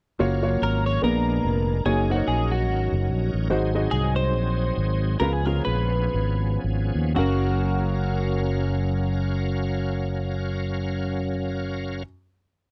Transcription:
0.19 fingered electric bass F#1, tonewheel organ F#3 C#4 A#4 F5, grand piano A#3 F4 F#4 C#5
0.42 grand piano A#3 F4 F#4 C#5
0.62 fingered electric bass G#1, clean electric guitar A#4
0.86 clean electric guitar C#5
1.01 fingered electric bass A#1, grand piano A#2 A#3 B3 D4 G#4, tonewheel organ G#3 D4 A#4, clean electric guitar A#4
1.44 fingered electric bass F1
1.85 fingered electric bass F#1, tonewheel organ F#3 C#4 D#4 A4, grand piano A#3 D#4 F#4 C#5, clean electric guitar G#4
1.92 tonewheel organ A#4
2.10 grand piano A#3 D#4 F#4 C5, clean electric guitar F#4
2.16 grand piano C#5
2.28 fingered electric bass A#1, clean electric guitar G#4
2.51 clean electric guitar F#4
2.69 fingered electric bass G#1
2.92 fingered electric bass F#1
3.10 fingered electric bass A#1
3.34 fingered electric bass A1
3.50 fingered electric bass G#1, grand piano G#2 G#3 D#4 F#4 C5, tonewheel organ F#3 C4 D#4 G4
3.56 tonewheel organ G#4
3.74 grand piano G#3 D#4 F#4 D#5
3.91 fingered electric bass C2, clean electric guitar G#4
4.16 clean electric guitar C5
4.33 fingered electric bass A#1
4.77 fingered electric bass G#1
5.20 fingered electric bass C#2, grand piano C#3 G#3 C#4 F4 B4, tonewheel organ F3 B3 C#4 G#4, clean electric guitar A#4
5.33 clean electric guitar G#4
5.46 grand piano G#3 C#4 F4 G#4, clean electric guitar A#4
5.65 fingered electric bass A#1, clean electric guitar B4
6.14 fingered electric bass G#1
6.64 fingered electric bass G#1
6.95 fingered electric bass D#2
7.14 fingered electric bass F#1, grand piano F#2 F#3 C#4 A#4 F5, tonewheel organ F#3 C#4 A#4, clean electric guitar F#4
7.19 tonewheel organ F5

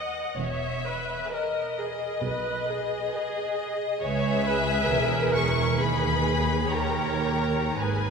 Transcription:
Already playing: violin section G#4 B4 F#5, viola section D#5
0.37 double bass section E1, cello section E2, viola section C#5, violin section E5
0.85 viola section B4
1.30 violin section G#4 B4 D#5, viola section A#4
1.76 viola section G#4
2.22 double bass section B1, cello section B2, viola section B4
2.68 viola section G#4
3.13 violin section G#4 B4
4.01 double bass section C#2, cello section C#2, violin section G#4 B4 E5, viola section C#5
4.45 viola section B4
4.89 double bass section E1, cello section E2, viola section A#4
5.33 violin section C#6
5.75 double bass section D#2, cello section D#2, violin section G#4 B4 B5, viola section G#4
6.70 double bass section D#2, cello section D#2, violin section G4 C#5 A#5, viola section A#4
7.77 double bass section G#1, cello section G#2, violin section G#4 B4 G#5, viola section B4

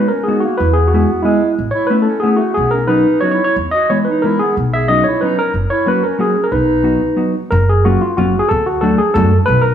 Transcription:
Already playing: hollow-body jazz guitar G#3 B3 D#4 F#4, tine electric piano B4
0.08 clarinet C#4, tine electric piano A#4
0.24 clarinet B3, tine electric piano G#4
0.28 hollow-body jazz guitar G#3 B3 D#4 F#4
0.40 clarinet A#3, tine electric piano F#4
0.58 upright bass E2, clarinet E4, tine electric piano B4
0.73 clarinet B3, tine electric piano G#4
0.88 clarinet B3, tine electric piano F#4
0.94 hollow-body jazz guitar G#3 B3 E4 G#4
1.22 clarinet G#3, hollow-body jazz guitar G#3 B3 E4 G#4, tine electric piano E4
1.59 upright bass A1
1.71 clarinet E4, tine electric piano C#5
1.87 hollow-body jazz guitar A3 B3 C#4 E4, clarinet E4, tine electric piano B4
2.02 clarinet C#4, tine electric piano A4
2.20 hollow-body jazz guitar A3 B3 E4, clarinet B3, tine electric piano G#4
2.24 hollow-body jazz guitar C#4
2.36 clarinet A3, tine electric piano F#4
2.54 upright bass B1, clarinet B3, tine electric piano G#4
2.71 clarinet C#4, tine electric piano A#4
2.86 hollow-body jazz guitar F#3 B3 C#4 D#4, clarinet D#4, tine electric piano B4
3.21 hollow-body jazz guitar F#3 B3 C#4 D#4, clarinet F#4, tine electric piano C#5
3.31 clarinet E4, tine electric piano C#5
3.44 clarinet E4, tine electric piano C#5
3.56 upright bass E2
3.71 clarinet F#4, tine electric piano D#5
3.89 hollow-body jazz guitar E3 G#3 B3 E4, clarinet E4, tine electric piano C#5
4.05 clarinet D#4, tine electric piano B4
4.22 hollow-body jazz guitar E3 G#3 B3 E4, clarinet E4, tine electric piano A#4
4.39 clarinet B3, tine electric piano G#4
4.57 upright bass B1
4.74 clarinet G#4, tine electric piano E5
4.88 hollow-body jazz guitar F#3 B3 C#4 D#4, clarinet F#4, tine electric piano D#5
5.04 clarinet E4, tine electric piano C#5
5.21 hollow-body jazz guitar F#3 B3 C#4 D#4, clarinet D#4, tine electric piano B4
5.38 clarinet C#4, tine electric piano A#4
5.54 upright bass F#1
5.70 clarinet E4, tine electric piano C#5
5.86 hollow-body jazz guitar F#3 A#3 C#4 F#4, clarinet F#4, tine electric piano B4
6.03 clarinet C#4, tine electric piano A#4
6.18 hollow-body jazz guitar F#3 A#3 C#4 F#4, clarinet C#4, tine electric piano G#4
6.43 clarinet C#4, tine electric piano A#4
6.52 upright bass B1, clarinet D#4, tine electric piano B4
6.83 hollow-body jazz guitar F#3 B3 D#4 F#4
7.16 hollow-body jazz guitar F#3 B3 D#4 F#4
7.51 upright bass F#1, tine electric piano A#4
7.69 tine electric piano G#4
7.85 hollow-body jazz guitar F#3 A#3 C#4 F4, tine electric piano F#4
8.01 tine electric piano F4
8.17 upright bass F#1, hollow-body jazz guitar F#3 A#3 C#4 F4, tine electric piano F#4
8.39 tine electric piano G#4
8.49 upright bass D2, tine electric piano A4
8.66 tine electric piano F#4
8.81 hollow-body jazz guitar F#3 A3 D4 F#4, tine electric piano A4
8.98 tine electric piano G#4
9.14 upright bass F#2, hollow-body jazz guitar F#3 A3 D4 F#4, tine electric piano A4
9.46 upright bass B1, tine electric piano B4
9.61 tine electric piano A#4

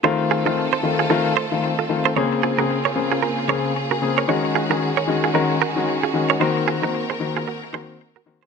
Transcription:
0.03 grand piano D#3 A3 C4 F4, string section D#3 A3 C4 F4 A4, clean electric guitar A4 C5
0.31 clean electric guitar F4 G#4
0.45 grand piano D#3 A3 C4 F4, clean electric guitar F4 A4
0.73 clean electric guitar A4 C5
0.83 grand piano D#3 A3 C4 F4
0.99 clean electric guitar F4 G#4
1.10 grand piano D#3 A3 C4 F4, clean electric guitar F4 A4
1.37 clean electric guitar A4 C5
1.52 grand piano D#3 A3 C4 F4
1.79 clean electric guitar F4 A4
1.89 grand piano D#3 A3 C4 F4
2.05 clean electric guitar A4 C5
2.16 grand piano C#3 A#3 C4 G#4, string section C#3 A#3 F4 G#4, clean electric guitar A#4 C#5
2.43 clean electric guitar F4 G#4
2.58 grand piano C#3 A#3 C4 G#4, clean electric guitar F#4 A#4
2.85 clean electric guitar A#4 C#5
2.96 grand piano C#3 A#3 C4 G#4
3.12 clean electric guitar F4 G#4
3.23 clean electric guitar F4 A#4
3.48 grand piano C#3 A#3 C4 G#4, clean electric guitar A#4 C#5
3.91 clean electric guitar F#4 A#4
4.02 grand piano C#3 A#3 C4 G#4
4.18 clean electric guitar A#4 C#5
4.28 grand piano D#3 G#3 C#4 F#4, string section D#3 G#3 C#4 F#4, clean electric guitar G#4 C#5
4.55 clean electric guitar F4 G#4
4.70 grand piano D#3 G#3 C#4 F#4, clean electric guitar F#4 A#4
4.97 clean electric guitar A#4 C#5
5.08 grand piano D#3 G#3 C#4 F#4
5.24 clean electric guitar F4 G#4
5.34 grand piano D#3 G#3 C#4 F#4, clean electric guitar F#4 A#4
5.62 clean electric guitar F#4 A#4
5.76 grand piano D#3 G#3 C#4 F#4
6.03 clean electric guitar F4 G#4
6.14 grand piano D#3 G#3 C#4 F#4
6.30 clean electric guitar A#4 C#5
6.40 grand piano D#3 A#3 C4 F#4, string section A#3 C4 A#4, clean electric guitar F#4 C5
6.68 clean electric guitar F4 G#4
6.82 grand piano D#3 A#3 C4 F#4, clean electric guitar F#4 A#4
7.10 clean electric guitar G#4 C5
7.20 grand piano D#3 A#3 C4 F#4
7.37 clean electric guitar F4 G#4
7.48 clean electric guitar F#4 A#4
7.73 grand piano D#3 A#3 C4 F#4, clean electric guitar G#4 C5
8.16 clean electric guitar F#4 A#4
8.26 grand piano D#3 A#3 C4 F#4
8.43 clean electric guitar G#4 C5

